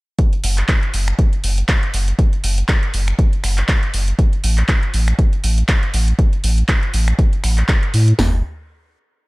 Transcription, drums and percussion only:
0.19 kick loud
0.19 closed hi-hat soft
0.33 closed hi-hat soft
0.44 open hi-hat loud
0.58 clap soft
0.58 closed hi-hat medium
0.68 kick loud
0.68 clap loud
0.68 closed hi-hat medium
0.83 closed hi-hat soft
0.94 open hi-hat medium
1.08 finger snap medium
1.08 closed hi-hat medium
1.19 kick loud
1.19 closed hi-hat medium
1.33 closed hi-hat soft
1.44 open hi-hat loud
1.58 closed hi-hat medium
1.69 finger snap medium
1.69 kick loud
1.69 clap loud
1.69 closed hi-hat soft
1.83 closed hi-hat soft
1.94 open hi-hat medium
2.08 closed hi-hat medium
2.19 kick loud
2.19 closed hi-hat medium
2.33 closed hi-hat soft
2.44 open hi-hat loud
2.58 closed hi-hat medium
2.69 kick loud
2.69 clap loud
2.69 closed hi-hat medium
2.83 closed hi-hat soft
2.94 open hi-hat medium
3.08 finger snap medium
3.08 closed hi-hat medium
3.19 kick loud
3.19 closed hi-hat medium
3.33 closed hi-hat soft
3.44 finger snap medium
3.44 open hi-hat loud
3.58 clap soft
3.58 closed hi-hat medium
3.68 kick loud
3.68 clap loud
3.68 closed hi-hat soft
3.83 closed hi-hat soft
3.94 open hi-hat loud
4.08 closed hi-hat medium
4.19 kick loud
4.19 closed hi-hat medium
4.33 closed hi-hat soft
4.44 open hi-hat loud
4.58 clap soft
4.58 closed hi-hat soft
4.68 kick loud
4.68 clap loud
4.68 closed hi-hat soft
4.83 closed hi-hat soft
4.94 open hi-hat medium
5.08 finger snap medium
5.08 closed hi-hat medium
5.19 kick loud
5.19 closed hi-hat medium
5.33 closed hi-hat soft
5.44 open hi-hat loud
5.58 closed hi-hat medium
5.69 finger snap medium
5.69 kick loud
5.69 clap loud
5.69 closed hi-hat medium
5.83 closed hi-hat soft
5.94 open hi-hat loud
6.08 closed hi-hat soft
6.19 kick loud
6.19 closed hi-hat soft
6.33 closed hi-hat soft
6.44 open hi-hat loud
6.58 closed hi-hat soft
6.68 kick loud
6.68 clap loud
6.68 closed hi-hat soft
6.83 closed hi-hat soft
6.94 open hi-hat loud
7.08 finger snap medium
7.08 closed hi-hat soft
7.19 kick loud
7.19 closed hi-hat soft
7.33 closed hi-hat soft
7.44 finger snap medium
7.44 open hi-hat loud
7.58 clap soft
7.58 closed hi-hat soft
7.69 kick loud
7.69 clap loud
7.69 closed hi-hat soft
7.83 closed hi-hat soft
7.94 open hi-hat loud
8.08 closed hi-hat soft
8.19 snare loud
8.19 floor tom loud
8.19 open hi-hat medium

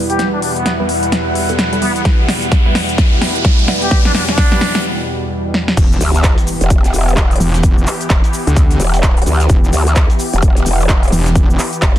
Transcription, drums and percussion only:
0.10 closed hi-hat medium
0.19 snare medium
0.19 closed hi-hat medium
0.42 open hi-hat loud
0.56 closed hi-hat medium
0.66 snare medium
0.66 closed hi-hat medium
0.89 open hi-hat medium
1.03 closed hi-hat medium
1.12 snare medium
1.12 closed hi-hat medium
1.35 open hi-hat loud
1.49 closed hi-hat medium
1.59 snare medium
1.59 closed hi-hat medium
1.73 closed hi-hat soft
1.82 open hi-hat loud
1.96 closed hi-hat medium
2.05 kick loud
2.05 snare medium
2.05 closed hi-hat medium
2.28 snare medium
2.28 open hi-hat loud
2.42 closed hi-hat medium
2.52 kick loud
2.52 snare medium
2.52 closed hi-hat medium
2.75 snare medium
2.75 open hi-hat loud
2.89 closed hi-hat medium
2.98 kick loud
2.98 snare medium
2.98 closed hi-hat medium
3.22 snare medium
3.22 open hi-hat loud
3.35 closed hi-hat medium
3.45 kick loud
3.45 snare medium
3.45 closed hi-hat medium
3.59 closed hi-hat soft
3.68 snare medium
3.68 open hi-hat loud
3.82 closed hi-hat medium
3.91 kick loud
3.91 snare medium
3.91 closed hi-hat medium
4.05 snare medium
4.15 snare medium
4.15 open hi-hat loud
4.29 snare medium
4.29 closed hi-hat medium
4.38 kick loud
4.38 snare loud
4.38 closed hi-hat medium
4.52 snare medium
4.61 snare loud
4.61 open hi-hat loud
4.75 snare medium
4.75 closed hi-hat medium
5.54 snare medium
5.68 snare medium
5.77 kick loud
5.77 closed hi-hat medium
5.77 crash loud
5.77 cabasa soft
5.77 shaker medium
5.92 cabasa soft
6.01 open hi-hat loud
6.01 cabasa medium
6.01 shaker medium
6.15 closed hi-hat medium
6.15 cabasa soft
6.24 kick loud
6.24 snare loud
6.24 clap loud
6.24 closed hi-hat medium
6.24 cabasa soft
6.24 shaker medium
6.38 closed hi-hat soft
6.38 cabasa soft
6.47 open hi-hat medium
6.47 cabasa medium
6.47 shaker medium
6.61 closed hi-hat medium
6.61 cabasa soft
6.70 kick loud
6.70 closed hi-hat medium
6.70 cabasa soft
6.70 shaker medium
6.84 snare soft
6.84 closed hi-hat medium
6.84 cabasa soft
6.94 open hi-hat loud
6.94 cabasa medium
6.94 shaker medium
7.08 cabasa soft
7.17 kick loud
7.17 snare loud
7.17 clap loud
7.17 closed hi-hat medium
7.17 cabasa soft
7.17 shaker medium
7.31 closed hi-hat medium
7.31 cabasa soft
7.36 closed hi-hat medium
7.40 open hi-hat medium
7.40 cabasa medium
7.40 shaker medium
7.54 snare medium
7.54 closed hi-hat medium
7.54 cabasa soft
7.63 kick loud
7.63 closed hi-hat medium
7.63 cabasa soft
7.63 shaker medium
7.78 cabasa soft
7.87 clap medium
7.87 open hi-hat loud
7.87 cabasa medium
7.87 shaker medium
8.01 closed hi-hat medium
8.01 cabasa soft
8.10 kick loud
8.10 snare loud
8.10 clap loud
8.10 closed hi-hat medium
8.10 cabasa soft
8.10 shaker medium
8.24 closed hi-hat soft
8.24 cabasa soft
8.33 open hi-hat loud
8.33 cabasa medium
8.33 shaker medium
8.47 closed hi-hat medium
8.47 cabasa soft
8.56 kick loud
8.56 closed hi-hat medium
8.56 cabasa soft
8.56 shaker medium
8.70 snare soft
8.70 closed hi-hat medium
8.70 cabasa soft
8.80 open hi-hat loud
8.80 cabasa medium
8.80 shaker medium
8.94 closed hi-hat soft
8.94 cabasa soft
9.03 kick loud
9.03 snare loud
9.03 clap loud
9.03 closed hi-hat medium
9.03 cabasa soft
9.03 shaker medium
9.17 closed hi-hat medium
9.17 cabasa soft
9.22 closed hi-hat medium
9.26 open hi-hat loud
9.26 cabasa medium
9.26 shaker medium
9.40 snare soft
9.40 closed hi-hat medium
9.40 cabasa soft
9.49 kick loud
9.49 closed hi-hat medium
9.49 cabasa soft
9.49 shaker medium
9.64 cabasa soft
9.73 open hi-hat loud
9.73 cabasa medium
9.73 shaker medium
9.87 closed hi-hat medium
9.87 cabasa soft
9.96 kick loud
9.96 snare loud
9.96 clap loud
9.96 closed hi-hat medium
9.96 cabasa soft
9.96 shaker medium
10.10 closed hi-hat soft
10.10 cabasa soft
10.19 open hi-hat loud
10.19 cabasa medium
10.19 shaker medium
10.33 closed hi-hat medium
10.33 cabasa soft
10.42 kick loud
10.42 closed hi-hat medium
10.42 cabasa soft
10.42 shaker medium
10.56 snare soft
10.56 closed hi-hat medium
10.56 cabasa soft
10.66 open hi-hat loud
10.66 cabasa medium
10.66 shaker medium
10.81 cabasa soft
10.89 kick loud
10.89 snare loud
10.89 clap loud
10.89 closed hi-hat medium
10.89 cabasa soft
10.89 shaker medium
11.03 closed hi-hat soft
11.03 cabasa soft
11.08 closed hi-hat medium
11.12 open hi-hat loud
11.12 cabasa medium
11.12 shaker medium
11.26 snare medium
11.26 closed hi-hat medium
11.26 cabasa soft
11.35 kick loud
11.35 closed hi-hat medium
11.35 cabasa soft
11.35 shaker medium
11.50 cabasa soft
11.59 clap medium
11.59 open hi-hat loud
11.59 cabasa medium
11.59 shaker medium
11.73 closed hi-hat soft
11.73 cabasa soft
11.82 kick loud
11.82 snare loud
11.82 clap loud
11.82 closed hi-hat medium
11.82 cabasa soft
11.82 shaker medium

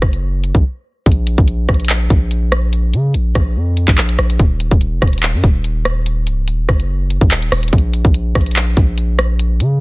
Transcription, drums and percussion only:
0.02 kick loud
0.02 cross-stick loud
0.02 closed hi-hat medium
0.13 closed hi-hat medium
0.44 closed hi-hat medium
0.55 kick medium
1.06 kick loud
1.06 closed hi-hat medium
1.12 closed hi-hat medium
1.27 closed hi-hat medium
1.38 kick loud
1.48 closed hi-hat medium
1.69 kick loud
1.69 cross-stick loud
1.69 closed hi-hat soft
1.74 closed hi-hat medium
1.80 closed hi-hat medium
1.85 closed hi-hat medium
1.89 clap loud
2.10 kick medium
2.10 closed hi-hat medium
2.31 closed hi-hat medium
2.52 cross-stick loud
2.52 closed hi-hat medium
2.73 closed hi-hat medium
2.94 closed hi-hat medium
3.14 closed hi-hat medium
3.35 kick loud
3.35 cross-stick loud
3.35 closed hi-hat medium
3.77 closed hi-hat medium
3.88 kick medium
3.88 clap medium
3.98 clap loud
4.09 closed hi-hat medium
4.19 cross-stick loud
4.19 closed hi-hat medium
4.30 closed hi-hat medium
4.39 kick loud
4.39 closed hi-hat medium
4.60 closed hi-hat medium
4.71 kick loud
4.81 closed hi-hat medium
5.02 kick loud
5.02 cross-stick loud
5.02 closed hi-hat soft
5.07 closed hi-hat medium
5.13 closed hi-hat medium
5.18 closed hi-hat medium
5.23 clap loud
5.44 kick loud
5.44 closed hi-hat medium
5.64 closed hi-hat medium
5.85 cross-stick loud
5.85 closed hi-hat medium
6.06 closed hi-hat medium
6.27 closed hi-hat medium
6.48 closed hi-hat medium
6.69 kick loud
6.69 cross-stick loud
6.69 closed hi-hat medium
6.80 closed hi-hat medium
7.10 closed hi-hat medium
7.21 kick medium
7.31 clap loud
7.42 closed hi-hat medium
7.52 cross-stick loud
7.52 open hi-hat medium
7.63 closed hi-hat medium
7.68 closed hi-hat medium
7.73 kick loud
7.73 closed hi-hat medium
7.78 closed hi-hat medium
7.93 closed hi-hat medium
8.05 kick loud
8.14 closed hi-hat medium
8.35 kick loud
8.35 cross-stick loud
8.35 closed hi-hat soft
8.41 closed hi-hat medium
8.46 closed hi-hat medium
8.51 closed hi-hat medium
8.56 clap loud
8.77 kick loud
8.77 closed hi-hat medium
8.98 closed hi-hat medium
9.19 cross-stick loud
9.19 closed hi-hat medium
9.39 closed hi-hat medium
9.60 closed hi-hat medium

